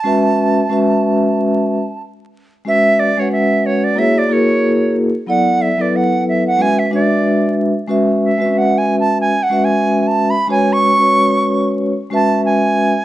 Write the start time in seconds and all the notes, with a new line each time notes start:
Already playing: A5
0.04 G#3 C#4 F#4 B4 E5
0.69 G#3 C#4 F#4 B4 E5
2.65 G#3 C#4 F#4 B4 E5
2.99 D5
3.18 G#3 C#4 F#4 B4 C#5 F#5
3.32 E5
3.66 C#5
3.84 D5
3.95 A#3 E4 F#4 G#4 C#5 E5
4.18 D5
4.28 A#3 E4 F#4 G#4 A#4
4.32 C#5
5.27 F#3 B3 E4 A4 D5 F#5
5.61 E5
5.77 F#3 B3 E4 A4 B4 D5
5.96 F#5
6.29 E5
6.47 F#5
6.57 G#3 C#4 F#4 B4 E5
6.62 G#5
6.79 E5
6.90 G#3 D4 F#4 B4 E5
6.95 D5
7.88 G#3 C#4 F#4 B4 E5
8.24 E5
8.38 G#3 C4 F#4 B4 E5
8.46 C#4
8.58 F#5
8.78 G#5
9.00 A5
9.21 G#5
9.43 F#5
9.49 G#3 C#4 F#4 B4 E5
9.64 G#5
10.03 G#5
10.07 A5
10.30 B5
10.47 G#3 C#4 F#4 B4 C#5 G#5
10.73 C#6
10.98 G#3 C#4 F#4 B4 C#5
12.10 G#3 C#4 F#4 B4 E5
12.14 A5
12.46 G#5